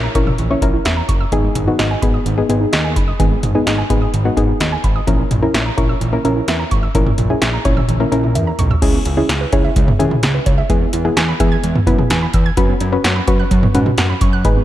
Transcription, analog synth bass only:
0.15 0.32 A#1 loud
0.39 0.55 A#1 loud
0.62 0.78 A#1 loud
0.86 1.02 E2 medium
1.09 1.25 F#1 medium
1.32 1.49 G#1 loud
1.56 1.72 G#1 loud
1.80 1.96 G#1 loud
2.02 2.19 G#1 loud
2.26 2.43 G#1 loud
2.50 2.66 G#1 medium
2.73 2.98 D#2 loud
2.96 3.13 F#1 medium
3.20 3.36 G#1 loud
3.43 3.60 G#1 loud
3.67 3.83 G#1 loud
3.90 4.07 G#1 loud
4.14 4.30 G#1 loud
4.37 4.53 G#1 loud
4.60 4.77 D#2 medium
4.84 5.00 G#1 loud
5.07 5.24 A#1 loud
5.31 5.47 A#1 loud
5.54 5.71 A#1 loud
5.78 5.94 A#1 loud
6.01 6.17 A#1 loud
6.25 6.41 A#1 loud
6.48 6.64 E2 medium
6.71 6.88 G#1 medium
6.95 7.11 A#1 loud
7.18 7.35 A#1 loud
7.42 7.58 A#1 loud
7.65 7.82 A#1 loud
7.88 8.05 A#1 loud
8.12 8.37 A#1 loud
8.35 8.52 E2 loud
8.59 8.75 B1 medium
8.82 8.99 C#2 loud
9.06 9.22 C#2 loud
9.29 9.46 C#2 loud
9.53 9.69 C#2 loud
9.76 9.93 C#2 loud
10.00 10.16 D#2 medium
10.23 10.39 C#2 loud
10.46 10.63 C#2 loud
10.70 10.86 E2 loud
10.93 11.10 E2 loud
11.17 11.33 E2 loud
11.40 11.56 E2 loud
11.64 11.80 E2 loud
11.87 12.03 F#2 loud
12.10 12.27 E2 loud
12.34 12.50 E2 loud
12.57 12.74 F#2 loud
12.81 12.97 F#2 loud
13.04 13.21 F#2 loud
13.28 13.44 F#2 loud
13.51 13.67 F#2 loud
13.75 13.91 G#2 medium
13.98 14.14 F#2 loud
14.21 14.46 F#2 loud
14.45 14.61 G#1 loud

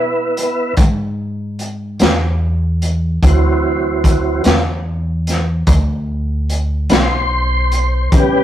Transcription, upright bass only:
0.00 0.75 B2 medium
0.78 1.97 G#2 medium
2.00 3.19 E2 medium
3.23 4.42 D2 medium
4.45 5.64 E2 medium
5.68 6.87 D2 medium
6.90 8.09 B1 medium
8.12 8.44 A1 medium

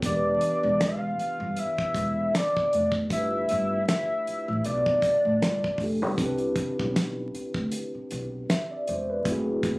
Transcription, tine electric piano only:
0.00 3.05 B3 medium
0.00 3.06 D4 medium
0.05 3.07 E3 medium
0.05 3.08 G4 medium
0.09 0.13 A#4 medium
0.16 3.13 B4 medium
3.08 5.74 A3 medium
3.08 5.75 D4 medium
3.12 5.76 F4 medium
3.12 5.78 G4 medium
3.17 5.79 B4 medium
5.79 6.18 A3 medium
5.79 6.16 D4 soft
5.79 6.19 F4 medium
5.79 6.19 G4 medium
5.84 6.20 A4 medium
6.15 9.20 C4 medium
6.15 9.21 D4 medium
6.20 9.23 E4 medium
6.20 9.24 G4 medium
6.24 8.48 B4 medium
8.51 8.69 E5 medium
8.71 8.87 D5 medium
8.89 9.08 C5 medium
9.10 9.45 B4 medium
9.23 9.31 G#3 medium
9.23 9.79 C4 medium
9.27 9.79 A3 medium
9.27 9.79 E4 medium
9.27 9.79 F#4 medium
9.32 9.66 G#4 medium

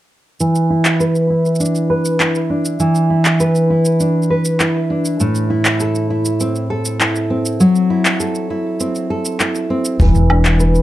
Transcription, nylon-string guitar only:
0.40 2.79 E3 medium
0.70 1.30 E4 medium
1.00 1.89 B4 medium
1.30 2.20 E4 medium
1.60 2.49 D4 medium
1.90 3.39 B4 medium
2.20 3.10 E4 medium
2.50 3.99 D4 medium
2.80 6.30 E3 medium
3.10 3.70 E4 medium
3.40 4.29 B4 medium
3.70 4.60 E4 medium
4.00 4.89 D4 medium
4.30 5.26 B4 medium
4.60 5.50 E4 medium
4.90 5.26 D4 medium
5.20 7.60 A2 medium
5.50 6.10 E4 medium
5.80 6.70 A4 medium
6.10 7.00 E4 medium
6.40 7.30 C4 medium
6.70 8.20 A4 medium
7.00 7.90 E4 medium
7.30 8.80 C4 medium
7.60 10.00 F#3 medium
7.90 8.50 E4 medium
8.20 9.09 A4 medium
8.50 9.40 E4 medium
8.80 9.69 C4 medium
9.10 10.00 A4 medium
9.40 10.33 E4 medium
9.70 10.06 C4 medium
10.00 10.82 E3 medium
10.00 10.59 B4 medium
10.30 10.82 D4 medium
10.60 10.82 B4 medium

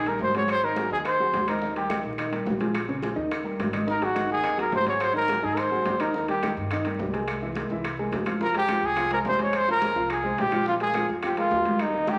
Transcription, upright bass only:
0.00 0.17 A#1 medium
0.20 0.85 G#1 medium
0.90 1.30 D#2 medium
1.32 1.98 D#2 medium
2.03 2.43 A#1 loud
2.46 3.11 A#1 medium
3.16 3.56 D#2 medium
3.59 4.25 G#1 medium
4.30 4.70 D#2 medium
4.73 5.38 G#1 medium
5.44 5.83 G#2 medium
5.86 6.51 D#2 medium
6.57 6.96 G2 loud
6.99 7.64 C2 medium
7.70 8.09 C2 medium
8.12 8.77 F2 medium
8.83 9.22 C2 medium
9.26 9.91 F2 medium
9.95 10.35 C2 medium
10.38 11.04 A#1 medium
11.09 11.49 F2 medium
11.51 12.17 D#2 medium

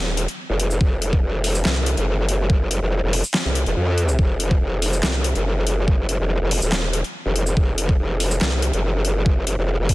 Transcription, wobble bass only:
0.00 0.27 D#1 loud
0.50 0.79 F1 loud
0.81 1.21 F1 medium
1.23 1.64 F1 medium
1.65 1.96 C2 loud
1.97 2.80 F#1 loud
2.82 3.01 F1 loud
3.03 3.22 F1 loud
3.45 3.65 C2 medium
3.66 3.75 F1 loud
3.77 4.17 F2 loud
4.19 4.59 F1 loud
4.61 5.02 F1 loud
5.03 5.34 C2 loud
5.35 6.18 F#1 loud
6.20 6.39 F1 loud
6.41 6.60 F1 loud
6.62 7.03 D#1 loud
7.26 7.55 F1 loud
7.57 7.97 F1 loud
7.99 8.40 F1 loud
8.41 8.72 C2 loud
8.73 9.56 F#1 loud
9.58 9.77 F1 medium
9.79 9.94 F1 loud

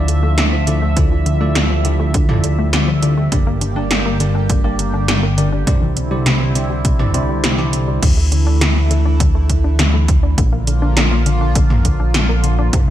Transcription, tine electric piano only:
0.00 0.34 D3 medium
0.00 0.34 D4 medium
0.00 0.34 E4 medium
0.00 0.34 F4 medium
0.00 0.34 A4 medium
0.00 0.34 D5 medium
0.38 0.54 D3 medium
0.38 0.54 D4 medium
0.38 0.54 E4 medium
0.38 0.54 F4 medium
0.38 0.54 A4 medium
0.38 0.54 D5 medium
0.67 0.77 D3 medium
0.67 0.77 D4 medium
0.67 0.77 E4 medium
0.67 0.77 F4 medium
0.67 0.77 A4 medium
0.67 0.77 D5 medium
0.97 1.37 D3 medium
0.97 1.37 D4 medium
0.97 1.37 E4 medium
0.97 1.37 F4 medium
0.97 1.37 A4 medium
0.97 1.37 D5 medium
1.41 1.81 D3 medium
1.41 1.81 D4 medium
1.41 1.81 E4 medium
1.41 1.81 F4 medium
1.41 1.81 A4 medium
1.41 1.81 D5 medium
1.85 2.25 D3 medium
1.85 2.25 D4 medium
1.85 2.25 E4 medium
1.85 2.25 F4 medium
1.85 2.25 A4 medium
1.85 2.25 D5 medium
2.29 2.70 D3 medium
2.29 2.70 D4 medium
2.29 2.70 E4 medium
2.29 2.70 F4 medium
2.29 2.70 A4 medium
2.29 2.70 D5 medium
2.73 2.89 D3 medium
2.73 2.89 D4 medium
2.73 2.89 E4 medium
2.73 2.89 F4 medium
2.73 2.89 A4 medium
2.73 2.89 D5 medium
3.02 3.13 G3 medium
3.02 3.13 D4 medium
3.02 3.13 E4 medium
3.02 3.13 F4 medium
3.02 3.13 A4 medium
3.02 3.13 D5 medium
3.32 3.73 G2 medium
3.32 3.73 A#3 medium
3.32 3.73 D4 medium
3.32 3.73 G4 medium
3.32 3.73 A#4 medium
3.32 3.73 D5 medium
3.76 4.17 G2 medium
3.76 4.17 A#3 medium
3.76 4.17 D4 medium
3.76 4.17 G4 medium
3.76 4.17 A#4 medium
3.76 4.17 D5 medium
4.20 4.61 G2 medium
4.20 4.61 A#3 medium
4.20 4.61 D4 medium
4.20 4.61 G4 medium
4.20 4.61 A#4 medium
4.20 4.61 D5 medium
4.64 5.05 G2 medium
4.64 5.05 A#3 medium
4.64 5.05 D4 medium
4.64 5.05 G4 medium
4.64 5.05 A#4 medium
4.64 5.05 D5 medium
5.08 5.25 G2 medium
5.08 5.25 A#3 medium
5.08 5.25 D4 medium
5.08 5.25 G4 medium
5.08 5.25 A#4 medium
5.08 5.25 D5 medium
5.38 5.48 A#3 medium
5.38 5.48 D4 medium
5.38 5.48 G4 medium
5.38 5.48 A#4 medium
5.38 5.48 D5 loud
5.67 6.08 C3 medium
5.67 6.08 D4 medium
5.67 6.08 E4 medium
5.67 6.08 G4 medium
5.67 6.08 C5 medium
5.67 6.08 D5 medium
6.11 6.52 C3 medium
6.11 6.52 D4 medium
6.11 6.52 E4 medium
6.11 6.52 G4 medium
6.11 6.52 C5 medium
6.11 6.52 D5 medium
6.55 6.96 C3 medium
6.55 6.96 D4 medium
6.55 6.96 E4 medium
6.55 6.96 G4 medium
6.55 6.96 C5 medium
6.55 6.96 D5 medium
6.99 7.11 C3 medium
6.99 7.11 D4 medium
6.99 7.11 E4 medium
6.99 7.11 G4 medium
6.99 7.11 C5 medium
6.99 7.11 D5 medium
7.14 7.55 C3 medium
7.14 7.55 D4 medium
7.14 7.55 E4 medium
7.14 7.55 G4 medium
7.14 7.55 C5 medium
7.14 7.55 D5 loud
7.58 7.99 C3 medium
7.58 7.99 D4 medium
7.58 7.99 E4 medium
7.58 7.99 G4 medium
7.58 7.99 C5 medium
7.58 7.99 D5 medium

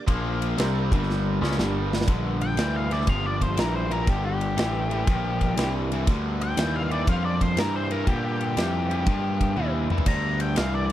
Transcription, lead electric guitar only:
2.42 2.74 G5 medium
2.76 2.93 F5 medium
2.93 3.09 D5 medium
3.09 3.25 F5 medium
3.26 3.43 D5 medium
3.43 3.60 C5 medium
3.60 3.75 A#4 medium
3.76 3.92 C5 medium
3.92 4.09 A#4 medium
4.09 4.25 G4 medium
4.26 5.71 G4 loud
6.43 6.74 G5 loud
6.76 6.91 F5 medium
6.92 7.08 D5 medium
7.09 7.25 F5 medium
7.25 7.41 D5 medium
7.42 7.59 C5 medium
7.59 7.76 A#4 medium
7.76 7.92 C5 medium
7.92 8.08 A#4 medium
8.07 8.24 G4 loud
8.25 9.70 G4 loud
10.08 10.40 A#5 loud
10.41 10.57 G5 medium
10.57 10.73 F5 medium
10.75 10.91 D5 medium

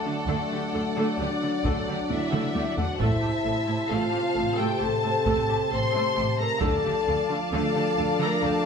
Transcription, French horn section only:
0.00 1.17 A3 medium
1.20 2.11 D4 medium
2.11 2.78 E4 medium
2.80 3.02 F#4 medium
3.01 3.89 E4 medium
3.92 4.59 F4 medium
4.60 4.82 G4 medium
4.81 5.72 A4 medium
5.72 6.39 C5 loud
6.41 6.63 A#4 medium
6.61 7.35 A4 medium
7.52 8.19 A4 medium
8.21 8.43 A#4 medium
8.42 8.65 A4 loud

